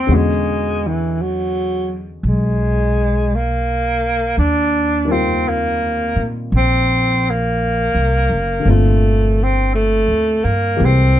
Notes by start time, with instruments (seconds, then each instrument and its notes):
Already playing: tenor saxophone C4
0.07 upright bass E2, grand piano B2 D3 G#3 C#4
0.12 tenor saxophone G#3, grand piano F#4
0.87 tenor saxophone E3
1.21 tenor saxophone F#3
2.23 upright bass B1, tenor saxophone G#3
3.35 tenor saxophone A#3
4.38 upright bass D#2, tenor saxophone D4
5.05 grand piano D#3 G3 A#3
5.09 grand piano C4 F4, tenor saxophone C4
5.48 tenor saxophone A#3
6.16 upright bass A#2
6.52 upright bass A#1, tenor saxophone C4
7.30 tenor saxophone A#3
7.95 upright bass C2
8.29 upright bass F#1
8.60 grand piano D3 A4
8.65 upright bass G1, grand piano A#2 C4
8.69 tenor saxophone A3, grand piano F4
9.43 tenor saxophone C4
9.75 tenor saxophone A3
10.08 upright bass D2
10.44 upright bass G2, tenor saxophone A#3
10.76 upright bass C2, grand piano E3 G#3 A#3 C4 G4
10.85 tenor saxophone C4